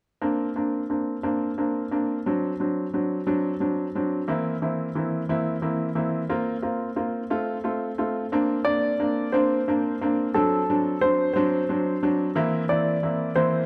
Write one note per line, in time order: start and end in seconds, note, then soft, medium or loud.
0.22 0.48 A#3 medium
0.22 0.48 C4 soft
0.22 0.48 D4 medium
0.56 0.82 A#3 soft
0.56 0.82 C4 soft
0.56 0.82 D4 soft
0.90 1.16 A#3 soft
0.90 1.16 C4 soft
0.90 1.16 D4 soft
1.23 1.50 A#3 soft
1.23 1.50 C4 soft
1.23 1.50 D4 medium
1.58 1.84 A#3 soft
1.58 1.84 C4 soft
1.58 1.84 D4 soft
1.91 2.18 A#3 medium
1.91 2.18 C4 soft
1.91 2.18 D4 medium
2.26 2.52 F#3 medium
2.26 2.52 C4 soft
2.26 2.52 D4 medium
2.60 2.86 F#3 soft
2.60 2.86 C4 soft
2.60 2.86 D4 soft
2.94 3.19 F#3 soft
2.94 3.19 C4 soft
2.94 3.20 D4 soft
3.27 3.53 F#3 medium
3.27 3.53 C4 soft
3.27 3.53 D4 medium
3.60 3.86 F#3 soft
3.60 3.87 C4 soft
3.60 3.87 D4 medium
3.95 4.21 F#3 medium
3.95 4.21 C4 medium
3.95 4.21 D4 medium
4.28 4.54 E3 medium
4.28 4.54 A#3 medium
4.28 4.54 C4 medium
4.28 4.54 E4 medium
4.62 4.88 E3 soft
4.62 4.88 A#3 soft
4.62 4.88 C4 soft
4.62 4.88 E4 medium
4.95 5.21 E3 soft
4.95 5.21 A#3 soft
4.95 5.21 C4 soft
4.95 5.22 E4 medium
5.29 5.55 E3 medium
5.29 5.55 A#3 medium
5.29 5.55 C4 medium
5.29 5.55 E4 medium
5.62 5.88 E3 medium
5.62 5.88 A#3 soft
5.62 5.88 C4 soft
5.62 5.88 E4 medium
5.95 6.21 E3 medium
5.95 6.21 A#3 soft
5.95 6.22 C4 medium
5.95 6.21 E4 medium
6.29 6.55 A#3 medium
6.29 6.55 C4 medium
6.29 6.55 F4 medium
6.62 6.89 A#3 soft
6.62 6.89 C4 soft
6.62 6.89 F4 medium
6.96 7.22 A#3 soft
6.96 7.22 C4 soft
6.96 7.23 F4 soft
7.30 7.56 A3 medium
7.30 7.57 C4 soft
7.30 7.57 F4 medium
7.64 7.90 A3 medium
7.64 7.91 C4 soft
7.64 7.91 F4 medium
7.98 8.24 A3 medium
7.98 8.24 C4 medium
7.98 8.25 F4 medium
8.32 8.59 A#3 medium
8.32 8.58 C4 medium
8.32 8.59 D4 medium
8.65 8.92 A#3 medium
8.65 8.92 C4 soft
8.65 8.92 D4 medium
8.65 9.35 D5 medium
9.00 9.26 A#3 medium
9.00 9.26 C4 soft
9.00 9.26 D4 medium
9.32 9.60 A#3 medium
9.32 9.60 C4 medium
9.32 9.60 D4 medium
9.32 9.97 C5 medium
9.68 9.94 A#3 medium
9.68 9.94 C4 medium
9.68 9.94 D4 medium
10.01 10.28 A#3 medium
10.01 10.28 C4 medium
10.01 10.28 D4 medium
10.34 10.61 F#3 medium
10.34 10.61 C4 medium
10.34 10.62 D4 medium
10.34 11.05 A4 medium
10.70 10.96 F#3 medium
10.70 10.96 C4 soft
10.70 10.96 D4 medium
11.01 11.29 F#3 soft
11.01 11.29 C4 soft
11.01 11.29 D4 medium
11.01 11.32 C5 medium
11.33 11.62 F#3 medium
11.33 11.62 C4 medium
11.33 11.62 D4 medium
11.33 12.06 C5 medium
11.69 11.95 F#3 medium
11.69 11.96 C4 medium
11.69 11.96 D4 medium
12.03 12.29 F#3 medium
12.03 12.29 C4 medium
12.03 12.29 D4 medium
12.35 12.62 E3 medium
12.35 12.62 A#3 medium
12.35 12.62 C4 medium
12.35 12.62 E4 medium
12.69 12.95 E3 medium
12.69 12.96 A#3 medium
12.69 12.96 C4 medium
12.69 12.96 E4 medium
12.69 13.39 D5 medium
13.03 13.29 E3 medium
13.03 13.29 A#3 soft
13.03 13.29 C4 soft
13.03 13.29 E4 medium
13.36 13.62 E3 medium
13.36 13.62 A#3 medium
13.36 13.62 C4 medium
13.36 13.63 E4 medium
13.36 13.66 C5 medium